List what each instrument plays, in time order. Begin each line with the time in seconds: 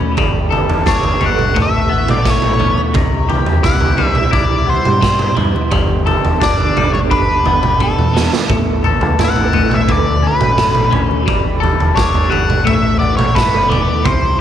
Already playing: clean electric guitar D3 A3 C#4 A4, string machine D3 F#4 A4
0.01 high conga
0.17 fingered electric bass G1, clean electric guitar G3, string machine G4 B4, kick, floor tom
0.50 clean electric guitar A4, floor tom, high conga, low conga
0.70 fingered electric bass E1, floor tom
0.86 fingered electric bass G1, clean electric guitar D4, lead electric guitar C#5, kick, snare, floor tom
1.03 floor tom
1.21 fingered electric bass G1, clean electric guitar G3, floor tom, low conga
1.26 lead electric guitar F#5
1.39 mid tom
1.54 fingered electric bass A1, clean electric guitar A3, string machine B3 E4 B5, kick, floor tom
1.62 lead electric guitar E5
1.89 fingered electric bass A1, clean electric guitar B3, high conga
2.08 lead electric guitar D5, mid tom
2.25 clean electric guitar A3, kick, snare
2.30 lead electric guitar C#5
2.42 fingered electric bass A1, mid tom
2.59 clean electric guitar B3, floor tom, low conga
2.78 high conga
2.94 fingered electric bass C2, clean electric guitar C3, string machine G3 E4 G4, kick, floor tom
3.29 clean electric guitar G4, floor tom, high conga, low conga
3.46 fingered electric bass E2, floor tom
3.63 fingered electric bass C2, clean electric guitar E4, lead electric guitar F#5, kick, snare, floor tom
3.81 floor tom
3.98 fingered electric bass C2, clean electric guitar G3, floor tom, low conga
4.07 lead electric guitar E5
4.15 lead electric guitar E5, mid tom
4.31 clean electric guitar E4, lead electric guitar D5, kick, floor tom
4.67 clean electric guitar B3, lead electric guitar C5, high conga
4.85 fingered electric bass G2, mid tom
5.01 clean electric guitar G3, kick, snare
5.19 mid tom
5.36 fingered electric bass G2, clean electric guitar B3, floor tom, low conga
5.56 high conga
5.71 fingered electric bass G1, clean electric guitar G3, string machine B3 D4 A4, kick, floor tom
5.89 high conga
6.06 clean electric guitar A4, floor tom, high conga, low conga
6.24 fingered electric bass E1, floor tom
6.40 fingered electric bass G1, clean electric guitar D4, lead electric guitar D5, kick, snare, floor tom
6.60 floor tom, high conga
6.76 fingered electric bass G1, clean electric guitar G3, floor tom, mid tom, low conga
6.93 lead electric guitar C#5, mid tom
7.10 clean electric guitar D4, lead electric guitar B4, kick, floor tom
7.45 fingered electric bass G1, clean electric guitar B3, floor tom, high conga
7.63 mid tom
7.80 clean electric guitar G3, lead electric guitar A4, kick
7.98 fingered electric bass E2, mid tom
8.14 clean electric guitar B3, snare, low conga
8.33 snare, high conga
8.49 fingered electric bass A1, clean electric guitar A3, string machine E4 B4, kick, floor tom
8.84 clean electric guitar A4, floor tom, high conga, low conga
9.01 fingered electric bass C#2, floor tom
9.19 fingered electric bass A1, clean electric guitar E4, kick, snare, floor tom
9.24 lead electric guitar F#5
9.36 floor tom
9.53 fingered electric bass A1, clean electric guitar A3, floor tom, low conga
9.71 lead electric guitar E5, mid tom
9.88 fingered electric bass D2, clean electric guitar D3, string machine D3 F#4, lead electric guitar D5, kick, floor tom
10.22 clean electric guitar C#4, high conga
10.27 lead electric guitar B4
10.41 fingered electric bass A1, mid tom
10.58 clean electric guitar A3, kick, snare
10.75 mid tom
10.91 fingered electric bass A1, clean electric guitar C#4, floor tom, low conga
11.11 high conga
11.26 fingered electric bass G1, clean electric guitar G3, string machine G4 B5, kick, floor tom
11.60 clean electric guitar A4, floor tom, high conga, low conga
11.80 fingered electric bass E1, floor tom
11.95 fingered electric bass G1, clean electric guitar D4, lead electric guitar C#5, kick, snare, floor tom
12.15 floor tom
12.30 fingered electric bass G1, clean electric guitar G3, lead electric guitar F#5, floor tom, low conga
12.50 mid tom
12.65 fingered electric bass A1, clean electric guitar A3, string machine B3 E4 A4, lead electric guitar E5, kick, floor tom
12.99 fingered electric bass A1, clean electric guitar B3, lead electric guitar D5, high conga
13.17 lead electric guitar C#5, mid tom
13.35 clean electric guitar A3, lead electric guitar B4, kick, snare
13.54 fingered electric bass F#1, mid tom
13.69 clean electric guitar B3, lead electric guitar D5, floor tom, low conga
13.88 high conga
14.04 fingered electric bass C2, clean electric guitar C3, string machine G3 G4, lead electric guitar C5, kick, floor tom